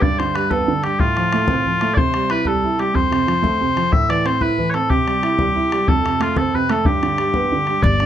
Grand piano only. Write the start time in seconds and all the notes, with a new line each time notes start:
0.03 G2
0.20 D3
0.36 G3
0.51 B3
0.68 D3
0.84 G3
1.00 A2
1.17 F3
1.34 A3
1.49 C4
1.67 F3
1.82 A3
1.97 C3
2.15 G3
2.30 E4
2.46 G3
2.64 E4
2.79 G3
2.94 F2
3.11 C3
3.27 F3
3.42 A3
3.61 C3
3.77 F3
3.92 A2
4.09 E3
4.25 C4
4.41 E4
4.59 E3
4.75 C4
4.90 C3
5.07 G3
5.23 E4
5.39 G3
5.55 E4
5.72 G3
5.88 F2
6.05 C3
6.20 A3
6.36 C4
6.55 C3
6.70 A3
6.86 G2
7.03 D3
7.18 G3
7.35 B3
7.52 D3
7.68 G3
7.83 G3
8.01 D4